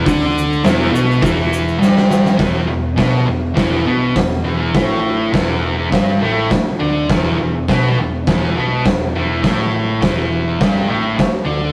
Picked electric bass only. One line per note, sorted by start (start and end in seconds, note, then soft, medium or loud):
0.07 0.61 D2 medium
0.64 0.91 E1 loud
0.91 1.20 B1 medium
1.81 2.36 G1 medium
2.39 2.67 E1 medium
2.70 2.97 E1 medium
2.98 3.26 B1 medium
3.28 3.55 E1 medium
3.87 4.14 B1 medium
4.16 4.43 E1 medium
4.45 4.72 E1 medium
4.75 5.29 A1 medium
5.34 5.88 E1 medium
6.21 6.49 A1 medium
6.81 7.08 D2 medium
7.10 7.37 E1 medium
7.41 7.67 E1 medium
7.69 7.95 B1 loud
7.97 8.24 E1 medium
8.27 8.54 E1 medium
8.58 8.84 B1 medium
8.86 9.13 E1 medium
9.16 9.42 E1 medium
9.44 9.98 A1 medium
10.02 10.57 E1 medium
10.62 10.88 G1 medium
10.89 11.17 A1 medium
11.46 11.72 D2 medium